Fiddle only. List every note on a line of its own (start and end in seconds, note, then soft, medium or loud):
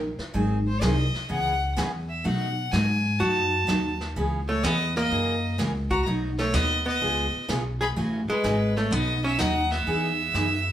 0.67 0.84 C5 medium
0.82 1.30 D#5 medium
1.31 1.74 F#5 medium
2.09 2.26 E5 medium
2.25 2.72 F#5 medium
2.71 3.21 G#5 medium
3.19 4.00 A5 medium
4.48 4.65 C#5 medium
4.64 4.96 D#5 loud
4.96 5.55 D#5 loud
5.90 6.05 A#5 loud
6.39 6.56 C#5 loud
6.55 6.86 D#5 loud
6.87 7.45 D#5 loud
7.81 7.88 B5 loud
8.30 8.78 B4 medium
8.77 8.93 C#5 medium
8.92 9.24 D#5 loud
9.24 9.41 E5 loud
9.40 9.73 F#5 loud
9.71 10.72 E5 loud